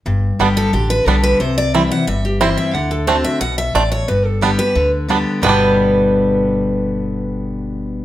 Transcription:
<<
  \new Staff \with { instrumentName = "Steel-string acoustic guitar" } { \time 4/4 \key g \major \tempo 4 = 179 r4. a'8 g'8 b'8 a'8 b'8 | c''8 d''8 e''8 fis''8 e''8 g'8 c''8 e''8 | fis''8 a'8 c''8 e''8 fis''8 e''8 d''8 cis''8 | b'8 a'8 g'8 b'4 r4. |
b'1~ | b'1 | }
  \new Staff \with { instrumentName = "Five-string banjo" } { \time 4/4 \key g \major r4 <g b d'>8 r4. <g b d'>8 r8 | r4 <g c' e'>8 r4. <g c' e'>8 r8 | r4 <a c' d'>8 r4. <a c' d'>8 r8 | r4 <g b d'>8 r4. <g b d'>8 r8 |
<g b d' g'>1~ | <g b d' g'>1 | }
  \new Staff \with { instrumentName = "Steel-string acoustic guitar" } { \clef bass \time 4/4 \key g \major << { r4 <d g b g'>4 r4 <d g b g'>4 | r4 <e g c' e'>8 <c' e'>8 r4 <e g c' e'>4 | r4 <d a c' fis'>4 r2 | r4 <d g b g'>8 <b g'>8 r4 <d g b g'>4 |
<g, b, d g b g'>1~ | <g, b, d g b g'>1 | } \\ { g,2 d2 | c2 g,2 | d2 b,4 a,4 | g,2 d2 |
r1 | r1 | } >> }
  \new Staff \with { instrumentName = "Upright bass" } { \clef bass \time 4/4 \key g \major g,,4 g,,4 a,,4 b,,4 | c,2 g,,2 | d,2 b,,4 a,,4 | g,,2 d,2 |
g,,1~ | g,,1 | }
>>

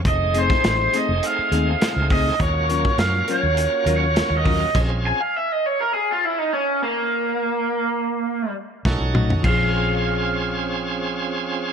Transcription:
<<
  \new Staff \with { instrumentName = "Overdriven electric guitar" } { \time 4/4 \key bes \minor \tempo 4 = 102 ees''8 c''8 c''8 ees''8 f''4. ees''8 | des''4 f''8 des''8~ \tuplet 3/2 { des''4 des''8~ des''8 ees''4 } | r8 aes''16 f''16 e''16 ees''16 des''16 bes'16 aes'16 f'16 e'16 ees'16 des'8 bes8~ | bes2~ bes8 r4. |
f''1 | }
  \new Staff \with { instrumentName = "Tonewheel organ" } { \time 4/4 \key bes \minor <a c' ees' gis'>1 | <bes des' f' ges'>1 | <c' des' f' aes'>4 r2. | r2. <des' dis' fis' a'>4 |
<c' des' f' aes'>1 | }
  \new Staff \with { instrumentName = "Clean electric guitar" } { \time 4/4 \key bes \minor r8 <a c' ees' gis'>8 r8 <a c' ees' gis'>8 r8 <a c' ees' gis'>8 r8 <a c' ees' gis'>8 | r8 <ges des' f' bes'>8 r8 <ges des' f' bes'>8 r8 <ges des' f' bes'>8 r8 <ges des' f' bes'>8 | r1 | r2. r8 <fis a dis' fis'>8 |
<f aes'>1 | }
  \new Staff \with { instrumentName = "Fingered electric bass" } { \clef bass \time 4/4 \key bes \minor f,,4 a,,8 r16 f,,16 r8 ees,8 r16 des,8. | ees,4 ges,8 r16 ees,8 r16 ees,8. ees,8. | bes,,8. r2. r16 | r2. b,,16 b,,8. |
bes,,1 | }
  \new DrumStaff \with { instrumentName = "Drums" } \drummode { \time 4/4 <hh bd>8 hh16 <bd sn>16 <hh sn>8 hh8 hh8 hh8 <hh sn>8 <hho bd>8 | <hh bd>8 hh16 bd16 <hh sn>8 hh8 hh8 hh8 <hh sn>8 <hho bd>8 | <cymc hh bd>4 r4 r4 r4 | r4 r4 r4 <bd sn>8 toml16 tomfh16 |
<cymc bd>4 r4 r4 r4 | }
>>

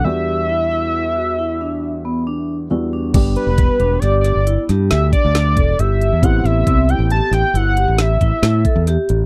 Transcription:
<<
  \new Staff \with { instrumentName = "Analog synth lead" } { \time 7/4 \key g \major \tempo 4 = 136 e''1. r4 | r8 b'4. d''8 d''4 r8 e''8 d''4. e''4 | fis''8 e''4 g''8 a''8 g''8 fis''4 e''2~ e''8 r8 | }
  \new Staff \with { instrumentName = "Vibraphone" } { \time 7/4 \key g \major g'4 e'8 e'4 fis'8 e'8 d'4 b8 d'4 e'8 d'8 | d'4 b8 d'8 g'4 e'8 g'4 d'8 d'8 a'8 g'4 | e'4 c'8 e'8 g'4 e'8 g'4 e'8 e'8 a'8 g'4 | }
  \new Staff \with { instrumentName = "Grand piano" } { \time 7/4 \key g \major <e, g b d' fis'>1. <e, g b d' fis'>4 | <g b d' g'>1.~ <g b d' g'>4 | <b c' e' g'>1.~ <b c' e' g'>4 | }
  \new Staff \with { instrumentName = "Fingered electric bass" } { \clef bass \time 7/4 \key g \major r1. r4 | g,,8 r16 e,,8 r16 e,,8 g,,8. g,,8 r16 g,8 d,8 r16 d,8. e,,8 g,,8. e,16 | a,,8 a,,8 c,8. a,,8 r16 a,,16 r16 g,,8. a,,8. a,,16 r16 a,8 r16 e,8 r16 a,,8 | }
  \new DrumStaff \with { instrumentName = "Drums" } \drummode { \time 7/4 r4 r4 r4 r4 r4 r4 r4 | <cymc hh bd>8 hh8 <hh bd>8 hh8 <hh sn>8 <hh sn>8 hh8 <hh sn>8 <hh sn>8 <hh bd>8 <hh sn>8 <hh bd>8 hh8 hh8 | <hh bd>8 <hh sn>8 <hh bd>8 hh8 hh8 <hh sn>8 hh8 hh8 <hh sn>8 <hh bd>8 <hh sn>8 <hh bd>8 <hh sn>8 hh8 | }
>>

